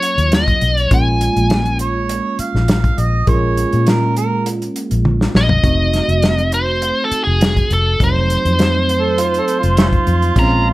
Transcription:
Already playing: tine electric piano F#3 A#3 C#4 F4, lead electric guitar C#5
0.02 closed hi-hat
0.18 fingered electric bass D#2, closed hi-hat
0.32 lead electric guitar D#5, snare, closed hi-hat
0.48 kick, closed hi-hat
0.61 fingered electric bass B1, closed hi-hat
0.77 lead electric guitar C#5, closed hi-hat
0.90 fingered electric bass A#1, tine electric piano G#3 A#3 C#4 F4, lead electric guitar G#5, kick, closed hi-hat
1.21 closed hi-hat
1.36 fingered electric bass A#1, closed hi-hat
1.50 snare, closed hi-hat
1.65 closed hi-hat
1.79 harmonica C#5, closed hi-hat
2.09 closed hi-hat
2.39 harmonica F5, muted fingered electric bass stroke, closed hi-hat
2.55 fingered electric bass A#1, snare
2.68 snare, closed hi-hat
2.84 kick, closed hi-hat
2.98 fingered electric bass A#1, harmonica D#5, closed hi-hat
3.27 fingered electric bass A#1, tine electric piano G#3 A#3 C#4 F4, harmonica C#5, kick, closed hi-hat
3.57 closed hi-hat
3.73 fingered electric bass A#2, closed hi-hat
3.87 harmonica A#4, snare, closed hi-hat
4.17 harmonica A#4, closed hi-hat
4.46 closed hi-hat
4.62 closed hi-hat
4.76 closed hi-hat
4.91 fingered electric bass A#1, closed hi-hat
5.05 high tom
5.21 snare
5.35 fingered electric bass A#1, lead electric guitar D#5, snare
5.49 floor tom
5.63 fingered electric bass F1, tine electric piano A3 C4 D#4 F#4, kick, closed hi-hat
5.93 snare, closed hi-hat
6.08 fingered electric bass F1, closed hi-hat
6.22 snare, closed hi-hat
6.38 closed hi-hat
6.52 lead electric guitar C5, closed hi-hat
6.82 closed hi-hat
7.04 lead electric guitar A4
7.11 muted fingered electric bass stroke, closed hi-hat
7.24 fingered electric bass F1, lead electric guitar G#4
7.41 snare, closed hi-hat
7.57 kick, closed hi-hat
7.70 fingered electric bass F1, lead electric guitar A4, closed hi-hat
8.00 fingered electric bass F1, tine electric piano F#3 A3 C4 D#4, lead electric guitar C5, kick, closed hi-hat
8.30 closed hi-hat
8.45 fingered electric bass F2, closed hi-hat
8.59 snare, closed hi-hat
8.89 closed hi-hat
9.00 harmonica A4
9.18 harmonica F4, closed hi-hat
9.34 closed hi-hat
9.39 harmonica A4
9.48 closed hi-hat
9.59 harmonica F4
9.63 fingered electric bass F1, closed hi-hat
9.77 harmonica A3 C#4 F4, snare, closed hi-hat
9.93 kick, closed hi-hat
10.07 fingered electric bass F2, closed hi-hat
10.22 closed hi-hat
10.36 fingered electric bass A#1, tine electric piano G#3 C4 C#4 F4, lead electric guitar A#5, kick, closed hi-hat, crash

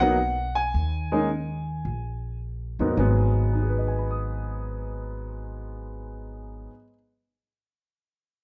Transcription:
Already playing: upright bass B1
0.00 grand piano F#3 A#3 B3 D#4 F#5
0.55 grand piano G#5
0.74 upright bass D#2
1.12 grand piano G#3 A#3 C#4 D#4
1.85 upright bass A#1
2.79 upright bass D#2, grand piano G#2 F#3 A#3 B3 D#4
2.96 upright bass G#1, grand piano G#2 F#3 G#3 B3
3.53 grand piano D#4
3.61 grand piano G#4
3.69 grand piano B4
3.78 grand piano D#5
3.88 grand piano G#5
3.99 grand piano B5
4.11 grand piano D#6

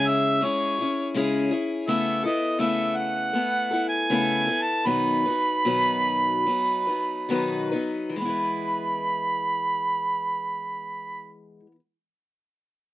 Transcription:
Already playing: steel-string acoustic guitar C#3 G#3 C#4 E4 G#4
0.08 harmonica E5
0.41 steel-string acoustic guitar G#3 C#4 E4 G#4, harmonica C#5
0.78 steel-string acoustic guitar C#4 E4 G#4
1.14 steel-string acoustic guitar C#3 G#3 C#4 E4 G#4
1.51 steel-string acoustic guitar C#4 E4 G#4
1.87 steel-string acoustic guitar C#3 A3 B3 E4 A4, harmonica E5
2.23 steel-string acoustic guitar B3 E4 A4, harmonica D#5
2.59 steel-string acoustic guitar C#3 A3 B3 E4 A4, harmonica E5
2.96 harmonica F#5
3.33 steel-string acoustic guitar A3 B3 E4 A4
3.71 steel-string acoustic guitar E4 A4
3.75 steel-string acoustic guitar B3
3.89 harmonica G#5
4.10 steel-string acoustic guitar C#3 A3 B3 E4 A4
4.47 steel-string acoustic guitar B3 E4 A4
4.62 harmonica A5
4.85 steel-string acoustic guitar B2 D#3 F#3 B3 D#4 B4, harmonica B5
5.26 steel-string acoustic guitar F#3 B3 D#4 B4
5.65 steel-string acoustic guitar B2 D#3 F#3 B3 D#4 B4
6.46 steel-string acoustic guitar F#3 B3 D#4 B4
6.87 steel-string acoustic guitar F#3 B3 D#4 B4
7.29 steel-string acoustic guitar B2 D#3 F#3 B3 D#4 B4
7.72 steel-string acoustic guitar F#3 B3 D#4 B4
8.10 steel-string acoustic guitar E3
8.16 steel-string acoustic guitar G#3, harmonica B5
8.21 steel-string acoustic guitar B3 E4
8.29 steel-string acoustic guitar B4

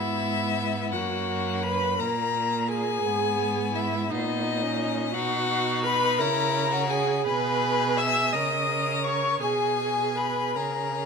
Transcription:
Already playing: cello G#2, violin B3 E5, viola E4
0.91 cello F#2, violin A#3 F#5, viola F#4
1.63 viola B4, violin B5
1.99 cello A#2, violin A#3 A#5, viola A#4
2.68 viola G#4, violin G#5
3.04 cello G#2, violin B3
3.74 viola E4, violin E5
4.10 cello A#2, violin B3 D#5, viola D#4
4.63 violin C#4
5.14 cello B2, violin D#4 F#5, viola F#4
5.83 viola B4, violin B5
6.19 cello C#3, violin E4 A#5, viola A#4
6.72 violin F#4
6.89 viola G#4, violin G#5
7.25 cello B2, violin G#4 B5, viola B4
7.97 viola E5, violin E6
8.32 cello C#3, violin A#4 D#6, viola D#5
9.04 viola C#5, violin C#6
9.40 cello B2, violin G#4 G#5, viola G#4
10.16 viola B4, violin B5
10.55 cello C#3, violin G#4 A#5, viola A#4

